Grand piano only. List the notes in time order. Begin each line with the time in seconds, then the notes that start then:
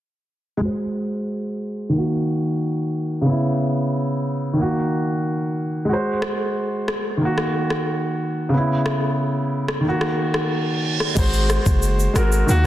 0.57 G#3
0.61 F#4 C5
1.89 D#3 A#3
1.97 F#4
3.21 C#3 B3
3.29 E4
4.53 D#3 A#3
4.61 F#4
5.85 G#3 F#4
5.93 C5
7.17 D#3 A#3
7.25 F#4
8.49 C#3
8.53 B3 E4
9.81 D#3
9.85 A#3 F#4
11.15 G#3 F#4 C5
12.14 G#3 F#4
12.18 A#4
12.46 D#3 A#3 F#4
12.63 D#3